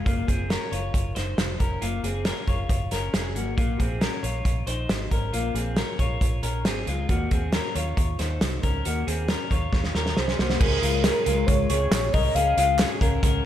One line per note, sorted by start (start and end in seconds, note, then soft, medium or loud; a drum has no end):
0.06 0.24 F#1 medium
0.06 0.28 A#3 medium
0.06 0.27 F4 medium
0.06 kick medium
0.06 closed hi-hat medium
0.28 0.55 F#1 medium
0.28 0.50 C4 medium
0.28 0.50 G#4 medium
0.28 kick medium
0.28 closed hi-hat medium
0.50 0.72 C#4 medium
0.50 0.71 A#4 medium
0.50 snare medium
0.50 closed hi-hat medium
0.72 0.90 F#1 medium
0.72 1.14 F4 soft
0.72 1.13 C#5 medium
0.72 closed hi-hat medium
0.94 1.12 F#1 medium
0.94 kick medium
0.94 closed hi-hat medium
1.15 1.34 F#1 medium
1.15 1.57 D#4 soft
1.15 1.57 C5 medium
1.15 snare soft
1.15 closed hi-hat medium
1.38 1.56 F1 medium
1.38 snare medium
1.38 closed hi-hat medium
1.60 1.78 F1 medium
1.60 1.82 C#4 soft
1.60 1.82 A#4 medium
1.60 kick medium
1.60 closed hi-hat medium
1.81 2.00 F#1 medium
1.81 2.04 A#3 medium
1.81 2.03 F4 medium
1.81 closed hi-hat medium
2.03 2.30 F#1 medium
2.03 2.26 C4 medium
2.03 2.26 G#4 medium
2.03 closed hi-hat medium
2.25 2.48 C#4 medium
2.25 2.47 A#4 medium
2.25 snare medium
2.25 closed hi-hat medium
2.47 2.66 F#1 medium
2.47 2.89 F4 soft
2.47 2.89 C#5 medium
2.47 kick medium
2.47 closed hi-hat medium
2.69 2.87 F#1 medium
2.69 kick medium
2.69 closed hi-hat medium
2.91 3.09 F#1 medium
2.91 3.13 C#4 medium
2.91 3.14 A#4 medium
2.91 snare soft
2.91 closed hi-hat medium
3.13 3.35 F1 medium
3.13 3.36 C#4 medium
3.13 3.35 G#4 medium
3.13 snare loud
3.13 closed hi-hat medium
3.35 3.53 G#1 medium
3.35 3.57 A#3 medium
3.35 3.57 F#4 medium
3.35 closed hi-hat medium
3.57 3.76 A#1 medium
3.57 3.80 A#3 medium
3.57 3.79 F4 medium
3.57 kick medium
3.57 closed hi-hat medium
3.79 4.07 A#1 medium
3.79 4.02 C4 medium
3.79 4.01 G#4 medium
3.79 kick medium
3.79 closed hi-hat medium
4.01 4.24 C#4 medium
4.01 4.22 A#4 medium
4.01 snare medium
4.01 closed hi-hat medium
4.23 4.41 A#1 medium
4.23 4.65 F4 soft
4.23 4.64 C#5 medium
4.23 closed hi-hat medium
4.45 4.63 A#1 medium
4.45 kick medium
4.45 closed hi-hat medium
4.67 4.85 A#1 medium
4.67 5.09 D#4 medium
4.67 5.08 C5 medium
4.67 closed hi-hat medium
4.89 5.07 G#1 medium
4.89 snare loud
4.89 closed hi-hat medium
5.11 5.29 G#1 medium
5.11 5.34 C#4 soft
5.11 5.33 A#4 medium
5.11 kick medium
5.11 closed hi-hat medium
5.33 5.51 A#1 medium
5.33 5.56 A#3 medium
5.33 5.55 F4 medium
5.33 closed hi-hat medium
5.54 5.82 A#1 medium
5.54 5.77 C4 medium
5.54 5.77 G#4 medium
5.54 closed hi-hat medium
5.76 5.99 C#4 medium
5.76 5.99 A#4 medium
5.76 snare medium
5.76 closed hi-hat medium
5.99 6.17 A#1 medium
5.99 6.41 F4 soft
5.99 6.41 C#5 medium
5.99 kick medium
5.99 closed hi-hat medium
6.21 6.39 A#1 medium
6.21 kick medium
6.21 closed hi-hat medium
6.42 6.65 A#1 medium
6.42 6.65 C#4 soft
6.42 6.65 A#4 medium
6.42 closed hi-hat medium
6.65 6.83 G#1 medium
6.65 6.87 C4 medium
6.65 6.87 G#4 medium
6.65 snare loud
6.65 closed hi-hat medium
6.87 7.05 C#2 medium
6.87 7.09 G#3 medium
6.87 7.08 F4 medium
6.87 closed hi-hat medium
7.09 7.27 D#2 medium
7.09 7.31 A#3 medium
7.09 7.31 F#4 medium
7.09 kick medium
7.09 closed hi-hat medium
7.31 7.58 D#2 medium
7.31 7.54 C4 medium
7.31 7.53 G#4 medium
7.31 kick medium
7.31 closed hi-hat medium
7.52 7.76 C#4 medium
7.52 7.75 A#4 medium
7.52 snare medium
7.52 closed hi-hat medium
7.75 7.93 D#2 medium
7.75 8.17 F4 soft
7.75 8.17 C#5 medium
7.75 closed hi-hat medium
7.97 8.15 D#2 medium
7.97 kick medium
7.97 closed hi-hat medium
8.19 8.37 D#2 medium
8.19 8.61 D#4 medium
8.19 8.60 C5 medium
8.19 snare soft
8.19 closed hi-hat medium
8.41 8.59 C2 medium
8.41 snare loud
8.41 closed hi-hat medium
8.63 8.81 C#2 medium
8.63 8.85 C#4 soft
8.63 8.85 A#4 medium
8.63 kick medium
8.63 closed hi-hat medium
8.85 9.03 D#2 medium
8.85 9.07 A#3 medium
8.85 9.07 F#4 medium
8.85 closed hi-hat medium
9.07 9.34 D#2 medium
9.07 9.29 C4 medium
9.07 9.29 G#4 medium
9.07 closed hi-hat medium
9.28 9.51 C#4 medium
9.28 9.51 A#4 medium
9.28 snare medium
9.28 closed hi-hat medium
9.51 9.69 D#2 medium
9.51 9.93 F4 medium
9.51 9.92 C#5 medium
9.51 kick medium
9.51 closed hi-hat medium
9.72 9.90 D#2 medium
9.72 kick medium
9.72 snare medium
9.84 snare soft
9.95 10.13 D#2 medium
9.95 10.17 C#4 soft
9.95 10.17 A#4 medium
9.95 snare medium
10.06 snare medium
10.17 10.35 C2 medium
10.17 10.39 C#4 medium
10.17 10.38 G#4 medium
10.17 10.57 C5 medium
10.17 snare medium
10.28 snare medium
10.39 10.57 C2 medium
10.39 10.61 A#3 soft
10.39 10.60 F#4 medium
10.39 snare medium
10.50 snare medium
10.60 10.79 C#2 loud
10.60 10.83 C#4 medium
10.60 10.82 G#4 medium
10.60 11.48 A#4 loud
10.60 kick loud
10.60 crash loud
10.82 11.09 C#2 loud
10.82 11.05 G#3 medium
10.82 11.04 F4 medium
10.82 closed hi-hat medium
11.04 11.27 C#4 medium
11.04 11.26 G#4 medium
11.04 snare loud
11.04 clap medium
11.04 closed hi-hat medium
11.26 11.44 C#2 loud
11.26 11.68 G#3 medium
11.26 11.67 F4 medium
11.26 closed hi-hat medium
11.46 11.66 C#2 loud
11.46 11.68 C#5 loud
11.46 kick loud
11.46 closed hi-hat loud
11.69 11.88 C#2 medium
11.69 12.11 C3 medium
11.69 12.11 G#4 medium
11.69 12.15 C#5 loud
11.69 closed hi-hat medium
11.91 12.09 A#1 medium
11.91 snare loud
11.91 clap loud
11.91 closed hi-hat loud
12.13 12.32 C2 medium
12.13 12.36 C#4 medium
12.13 12.36 A#4 medium
12.13 12.36 D#5 loud
12.13 kick medium
12.13 open hi-hat medium
12.35 12.53 C#2 loud
12.35 12.58 C#4 medium
12.35 12.57 G#4 medium
12.35 12.79 F5 loud
12.35 closed hi-hat medium
12.57 12.84 C#2 loud
12.57 12.80 G#3 medium
12.57 12.79 F4 medium
12.57 closed hi-hat medium
12.79 13.01 C#4 medium
12.79 13.01 G#4 medium
12.79 snare loud
12.79 clap medium
12.79 closed hi-hat medium
13.01 13.19 C#2 loud
13.01 13.23 C#4 medium
13.01 13.22 A#4 medium
13.01 kick loud
13.01 closed hi-hat medium
13.23 13.41 C#2 loud
13.23 13.45 C#4 medium
13.23 13.45 A#4 medium
13.23 kick loud
13.23 closed hi-hat loud